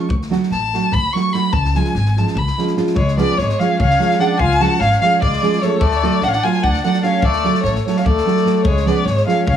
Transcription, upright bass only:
0.09 D2
0.50 A1
0.92 D2
1.53 C#2
1.95 G#1
2.35 C#2
2.95 C#2
3.38 G#1
3.80 C#2
4.39 C#2
4.80 G#1
5.21 C#2
5.80 D2
6.22 A1
6.64 D2
7.22 D2
7.63 A1
8.04 D2
8.64 C#2
9.05 G#1
9.46 C#2

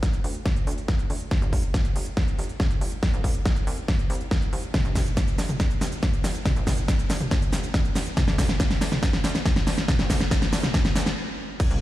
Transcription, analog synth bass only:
0.24 D2
0.67 D2
1.10 D2
1.42 G1
1.53 G1
1.96 G1
2.38 G1
2.81 G1
3.13 C2
3.24 C2
3.67 C2
4.10 C2
4.53 C2
4.85 G1
4.96 G1
5.38 G1
5.81 G1
6.24 G1
6.56 G1
6.67 G1
7.10 G1
7.53 G1
7.96 G1
8.28 D2
8.38 D2
8.81 D2
9.24 D2
9.67 D2
9.99 D2
10.10 D2
10.53 D2
10.96 D2
11.71 C2

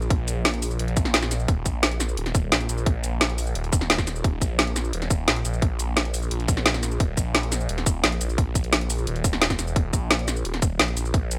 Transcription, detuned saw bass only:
Already playing: A#1
0.79 A#1
1.48 D#1
1.66 A#1
2.17 D#1
2.35 D#1
2.52 A#1
2.69 A#1
3.55 D#1
4.24 D#1
4.42 A#1
4.93 D#1
5.10 D#1
5.28 A#1
5.45 A#1
6.31 A#1
7.00 D#1
7.17 A#1
7.69 D#1
7.86 D#1
8.04 A#1
8.21 A#1
9.07 D#1
9.59 E1
9.76 D#1
9.93 A#1
10.45 D#1
10.62 D#1
10.80 A#1
10.97 A#1

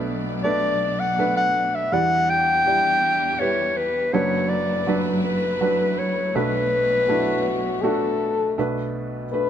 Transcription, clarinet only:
0.43 D5
0.99 F#5
1.37 F#5
1.75 E5
1.92 F#5
2.30 G5
3.40 C#5
3.77 B4
4.13 C#5
4.49 D5
5.24 B4
5.99 C#5
6.35 B4

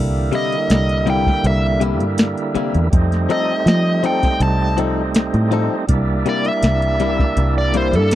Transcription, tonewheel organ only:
Already playing: D3 G3 A#3 E4
2.90 G3 A3 C4
2.94 D#4
5.87 G3 A#3 D4
5.91 E4

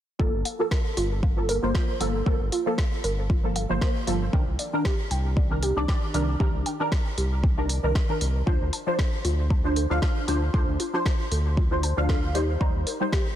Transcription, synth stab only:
0.19 F3 A#3 A4
0.59 F3 A#3 A4
1.37 F3 A#3 A4
1.62 F3 A#3 C5
1.74 F3 A#3 C5
2.00 F3 A#3 A4
2.26 F3 A#3 A4
2.66 F3 A#3 A4
3.44 F3 A#3 A4
3.69 F3 A#3 C5
3.81 F3 A#3 C5
4.07 F3 A#3 A4
4.33 D#3 D4 A#4
4.73 D#3 D4 A#4
5.50 D#3 D4 A#4
5.76 D#3 D4 D5
5.88 D#3 D4 D5
6.14 D#3 D4 A#4
6.40 D#3 D4 A#4
6.80 D#3 D4 A#4
7.57 D#3 D4 A#4
7.83 D#3 D4 A#4
8.09 D#3 D4 A#4
8.46 F3 D4 C5
8.87 F3 D4 C5
9.64 F3 D4 C5
9.90 F3 D4 F5
10.02 D4 F5
10.27 F3 D4 C5
10.53 F3 D4 C5
10.93 F3 D4 C5
11.71 F3 D4 C5
11.97 F3 D4 F5
12.09 F3 D4 F5
12.34 G3 D#4 C5
12.60 G3 D#4 C5
13.00 G3 D#4 C5

